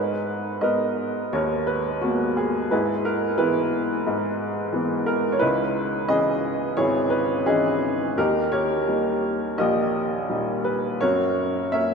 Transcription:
0.00 2.68 G#2 soft
0.00 1.28 D#4 soft
0.00 0.62 B4 medium
0.61 1.19 G#3 soft
0.61 1.19 B3 soft
0.61 1.33 A#4 soft
0.61 1.65 B4 soft
0.61 1.34 D#5 medium
1.33 2.68 D#2 medium
1.33 2.69 A#4 soft
1.33 1.69 C#5 medium
1.67 2.03 B4 medium
2.01 2.58 G#3 soft
2.01 2.59 A#3 soft
2.01 2.59 B3 soft
2.01 2.38 F#4 medium
2.37 2.69 G#4 medium
2.71 4.05 G#2 medium
2.71 3.37 E4 soft
2.71 3.37 G#4 soft
2.71 3.07 B4 medium
3.05 3.40 A#4 medium
3.38 3.93 E3 soft
3.38 3.93 G#3 soft
3.38 3.94 B3 soft
3.38 5.03 E4 soft
3.38 5.03 G#4 soft
3.38 5.12 B4 medium
4.07 5.38 G#2 medium
4.73 5.28 E3 soft
4.73 5.28 G#3 soft
4.73 5.28 B3 soft
5.06 5.35 A#4 medium
5.32 5.41 C#5 medium
5.39 8.13 C#2 medium
5.39 6.73 D#4 medium
5.39 6.73 E4 soft
5.39 6.10 B4 medium
6.08 6.63 E3 soft
6.08 6.64 C#4 soft
6.08 6.76 G#4 medium
6.08 6.73 D#5 medium
6.77 8.13 G#1 medium
6.77 7.46 E4 medium
6.77 7.45 G#4 medium
6.77 7.13 C#5 medium
7.10 7.47 B4 medium
7.46 8.03 E3 soft
7.46 8.03 C#4 soft
7.46 8.13 D#4 soft
7.46 8.13 E4 soft
7.46 8.19 G#4 medium
7.46 8.03 D#5 soft
8.17 10.98 D#2 soft
8.17 8.87 D#4 medium
8.17 8.52 G4 medium
8.17 8.51 A#4 medium
8.52 9.58 G4 soft
8.52 9.57 A#4 medium
8.52 9.54 C#5 medium
8.88 9.44 G3 soft
8.88 9.45 A#3 soft
8.88 9.45 D#4 soft
9.58 10.99 A#1 medium
9.58 10.99 G4 medium
9.58 10.98 A#4 medium
9.58 10.69 D#5 medium
10.30 10.88 A#2 soft
10.30 10.88 G3 soft
10.30 10.88 D#4 soft
10.64 11.03 B4 medium
11.01 11.94 F#2 medium
11.01 11.94 F#4 soft
11.01 11.72 A#4 soft
11.01 11.73 C#5 medium
11.72 11.94 F#3 soft
11.72 11.94 A#3 soft
11.72 11.94 C#4 soft
11.72 11.94 A#4 soft
11.72 11.94 C#5 soft
11.72 11.94 E5 medium

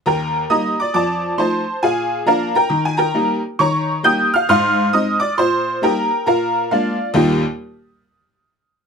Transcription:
0.06 0.43 D#2 medium
0.06 0.47 A#4 medium
0.06 0.47 G5 soft
0.06 0.43 A#5 medium
0.50 0.74 G3 soft
0.50 0.74 A#3 soft
0.50 0.75 D#4 soft
0.50 0.78 D#5 medium
0.50 0.78 A#5 medium
0.50 0.75 D#6 medium
0.80 0.94 D5 medium
0.80 0.92 D6 medium
0.94 1.31 F2 medium
0.94 1.36 D5 medium
0.94 1.36 A5 medium
0.94 1.32 D6 medium
1.38 1.62 F3 soft
1.38 1.63 A3 soft
1.38 1.63 D#4 soft
1.38 1.80 C5 soft
1.38 1.80 A5 soft
1.38 1.76 C6 medium
1.82 2.20 A#2 medium
1.82 2.24 G#4 medium
1.82 2.24 F5 medium
1.82 2.20 G#5 medium
2.26 2.50 F3 soft
2.26 2.51 A#3 soft
2.26 2.52 D4 soft
2.26 2.55 A#4 medium
2.26 2.55 F5 medium
2.26 2.52 A#5 medium
2.55 2.84 A#4 medium
2.55 2.84 G5 medium
2.55 2.81 A#5 medium
2.70 3.08 D#3 medium
2.85 2.97 G#5 medium
2.97 3.39 A#4 medium
2.97 3.39 G5 medium
2.97 3.35 A#5 medium
3.14 3.39 G3 soft
3.14 3.39 A#3 soft
3.14 3.40 D#4 medium
3.59 3.97 D#3 medium
3.59 4.01 C#5 medium
3.59 4.02 A#5 medium
3.59 3.97 C#6 medium
4.03 4.28 G3 soft
4.03 4.29 A#3 soft
4.03 4.29 D#4 soft
4.03 4.32 G5 medium
4.03 4.32 D#6 medium
4.03 4.29 G6 medium
4.34 4.49 F5 medium
4.34 4.46 F6 medium
4.49 4.87 G#2 medium
4.49 4.91 F5 medium
4.49 4.91 C6 medium
4.49 4.87 F6 loud
4.93 5.17 G#3 soft
4.93 5.18 C4 soft
4.93 5.18 D#4 medium
4.93 5.18 D#5 medium
4.93 5.16 D#6 medium
5.20 5.37 D5 medium
5.20 5.35 D6 medium
5.38 5.75 A#2 medium
5.38 5.80 C5 medium
5.38 5.75 C6 medium
5.82 6.06 G3 soft
5.82 6.07 A#3 soft
5.82 6.07 D#4 soft
5.82 6.24 A#4 medium
5.82 6.24 G5 medium
5.82 6.20 A#5 medium
6.26 6.64 A#2 medium
6.26 6.68 A#4 medium
6.26 6.68 F5 medium
6.26 6.64 A#5 medium
6.71 6.95 G#3 soft
6.71 6.96 A#3 soft
6.71 6.96 D4 soft
6.71 7.13 F4 soft
6.71 7.13 D5 soft
6.71 7.09 F5 medium
7.14 7.42 D#2 medium
7.14 7.42 A#2 medium
7.14 7.43 G3 medium
7.14 7.43 A#3 medium
7.14 7.43 D#4 medium
7.14 7.43 G4 medium
7.14 7.43 G5 medium

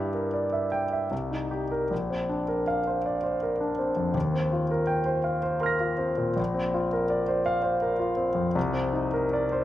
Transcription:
0.00 1.08 G2 soft
0.00 1.14 E4 soft
0.00 0.27 G4 soft
0.14 0.45 A#4 soft
0.34 0.65 D5 soft
0.53 0.84 E5 soft
0.72 1.03 G5 soft
0.93 1.12 E5 soft
1.11 1.89 C2 soft
1.31 1.63 D#4 soft
1.51 1.83 G4 soft
1.71 1.91 A#4 soft
1.91 4.11 A#1 soft
2.10 2.42 C4 soft
2.29 2.60 D4 soft
2.48 2.79 A#4 soft
2.68 2.98 F5 soft
2.87 3.16 C5 soft
3.06 3.34 D5 soft
3.23 3.52 C5 soft
3.43 3.71 A#4 soft
3.61 3.89 D4 soft
3.79 4.08 C4 soft
3.97 4.15 F2 soft
4.14 6.34 D#2 soft
4.34 4.63 C4 soft
4.52 4.81 F4 soft
4.71 5.00 A#4 soft
4.87 5.17 G5 soft
5.06 5.36 C5 soft
5.24 5.55 F5 soft
5.43 5.74 C5 soft
5.60 5.92 A#4 soft
5.60 6.33 C6 soft
5.60 6.35 F6 soft
5.66 6.36 A#6 soft
5.80 6.11 F4 soft
5.98 6.30 C4 soft
6.17 6.37 A#2 soft
6.36 8.51 A#1 soft
6.54 6.85 C4 soft
6.74 7.03 F4 soft
6.93 7.21 A#4 soft
7.10 7.39 D5 soft
7.28 7.57 C5 soft
7.46 7.75 F5 medium
7.63 7.92 C5 soft
7.82 8.11 A#4 soft
7.99 8.29 F4 soft
8.17 8.47 C4 soft
8.35 8.55 F2 soft
8.55 9.64 C2 soft
8.73 9.05 C4 soft
8.93 9.25 D#4 soft
9.13 9.45 A#4 soft
9.33 9.64 D5 soft
9.52 9.64 C5 soft

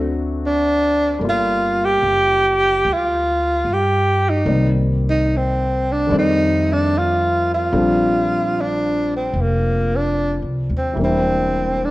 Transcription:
0.00 1.16 D2 medium
0.00 1.20 F#3 medium
0.00 0.20 A3 medium
0.00 1.18 A3 medium
0.00 1.21 C4 medium
0.00 1.21 D4 medium
0.00 1.21 F#4 medium
0.46 1.20 D4 medium
1.19 1.98 G1 medium
1.19 4.45 G3 soft
1.19 4.46 A3 soft
1.19 4.44 A#3 soft
1.19 4.46 D5 soft
1.24 4.49 F4 medium
1.29 1.86 F4 medium
1.85 2.94 G4 loud
2.03 2.80 F#1 medium
2.85 3.62 D2 medium
2.93 3.75 F4 medium
3.65 4.42 G2 medium
3.73 4.31 G4 medium
4.30 4.70 D#4 medium
4.45 6.05 C2 medium
4.45 6.05 D#3 soft
4.45 6.08 G3 soft
4.45 6.09 A#3 soft
4.45 6.10 C4 soft
4.45 6.10 D5 soft
5.10 5.38 D#4 medium
5.37 5.94 C4 medium
5.92 6.14 D4 medium
6.07 7.68 F2 medium
6.07 7.70 D#3 medium
6.07 7.71 G3 medium
6.07 7.72 A3 medium
6.12 7.73 C4 medium
6.12 7.73 D5 medium
6.19 6.74 D#4 medium
6.73 7.00 D4 medium
6.98 7.50 F4 medium
7.54 8.62 F4 medium
7.73 9.30 A#1 medium
7.73 10.97 F3 medium
7.73 10.94 G3 soft
7.73 10.97 C4 soft
7.73 10.97 D4 medium
7.73 10.97 A4 soft
8.61 9.12 D4 medium
9.17 9.43 C4 medium
9.34 10.38 F1 medium
9.41 9.98 A#3 medium
9.96 10.38 D4 medium
10.42 10.67 C2 medium
10.70 10.94 D#2 medium
10.78 10.98 C4 medium
10.94 11.91 E1 medium
10.94 11.91 E3 soft
10.94 11.91 G3 soft
10.99 11.91 A#3 soft
10.99 11.91 D4 soft
11.04 11.87 C4 medium
11.04 11.91 E4 soft
11.85 11.91 D4 medium

